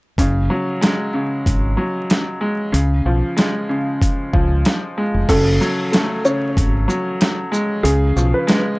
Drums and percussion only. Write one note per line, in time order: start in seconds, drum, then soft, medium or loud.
0.18 kick loud
0.18 closed hi-hat medium
0.82 snare loud
0.82 closed hi-hat medium
1.46 kick loud
1.46 closed hi-hat medium
2.10 snare loud
2.10 closed hi-hat medium
2.74 closed hi-hat loud
3.38 snare loud
3.38 closed hi-hat medium
4.01 kick loud
4.01 closed hi-hat medium
4.34 kick loud
4.65 snare loud
4.65 closed hi-hat medium
5.29 kick loud
5.29 closed hi-hat loud
5.29 crash loud
5.62 shaker soft
5.93 snare loud
5.93 closed hi-hat medium
6.25 shaker soft
6.57 kick loud
6.57 closed hi-hat medium
6.90 shaker medium
7.21 snare loud
7.21 closed hi-hat medium
7.53 shaker medium
7.85 closed hi-hat loud
8.17 shaker medium
8.48 snare loud
8.48 closed hi-hat medium